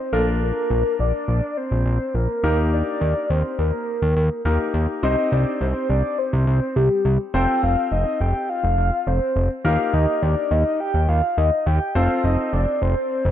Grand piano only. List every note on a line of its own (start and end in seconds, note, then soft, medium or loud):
0.13 2.39 A#3 medium
0.13 2.40 D4 medium
0.13 2.39 F4 medium
0.13 2.40 A#4 medium
2.44 4.41 A#3 medium
2.44 4.41 D#4 medium
2.44 4.41 G4 medium
2.44 4.41 A#4 medium
4.45 5.03 A#3 medium
4.45 5.02 D#4 medium
4.45 5.02 G4 medium
4.45 5.03 A#4 medium
5.03 7.30 C4 medium
5.03 7.30 D#4 medium
5.03 7.30 G4 medium
5.03 7.30 C5 medium
7.34 9.61 C4 medium
7.34 9.61 F4 medium
7.34 9.61 A4 medium
7.34 9.61 C5 medium
9.65 11.91 A#3 medium
9.65 11.91 D#4 medium
9.65 11.91 G4 medium
9.65 11.91 A#4 medium
11.95 13.31 C4 medium
11.95 13.31 F4 medium
11.95 13.31 A4 medium
11.95 13.31 C5 medium